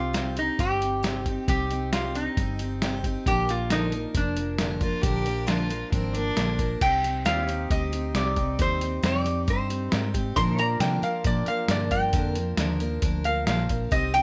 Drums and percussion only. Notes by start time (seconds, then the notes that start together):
0.14 snare, closed hi-hat
0.37 closed hi-hat
0.59 kick, closed hi-hat
0.82 closed hi-hat
1.04 snare, closed hi-hat
1.26 kick, closed hi-hat
1.48 kick, closed hi-hat
1.71 closed hi-hat
1.93 snare, closed hi-hat
2.15 closed hi-hat
2.37 kick, closed hi-hat
2.59 closed hi-hat
2.82 snare, closed hi-hat
3.04 kick, closed hi-hat
3.26 kick, closed hi-hat
3.49 closed hi-hat
3.70 snare, closed hi-hat
3.92 closed hi-hat
4.15 kick, closed hi-hat
4.37 closed hi-hat
4.58 snare, closed hi-hat
4.81 kick, closed hi-hat
5.03 kick, closed hi-hat
5.26 closed hi-hat
5.48 snare, closed hi-hat
5.70 closed hi-hat
5.92 kick, closed hi-hat
6.15 closed hi-hat
6.37 snare, closed hi-hat
6.59 kick, closed hi-hat
6.81 kick, closed hi-hat, crash
7.04 closed hi-hat
7.26 snare, closed hi-hat
7.49 closed hi-hat
7.70 kick, closed hi-hat
7.93 closed hi-hat
8.15 snare, closed hi-hat
8.36 kick, closed hi-hat
8.59 kick, closed hi-hat
8.81 closed hi-hat
9.04 snare, closed hi-hat
9.26 closed hi-hat
9.48 kick, closed hi-hat
9.70 closed hi-hat
9.92 snare, closed hi-hat
10.14 kick, closed hi-hat
10.36 kick, closed hi-hat
10.59 closed hi-hat
10.80 snare, closed hi-hat
11.03 closed hi-hat
11.24 kick, closed hi-hat
11.46 closed hi-hat
11.68 snare, closed hi-hat
11.91 kick, closed hi-hat
12.13 kick, closed hi-hat
12.35 closed hi-hat
12.57 snare, closed hi-hat
12.80 closed hi-hat
13.02 kick, closed hi-hat
13.24 closed hi-hat
13.47 snare, closed hi-hat
13.69 kick, closed hi-hat
13.92 kick, closed hi-hat
14.14 closed hi-hat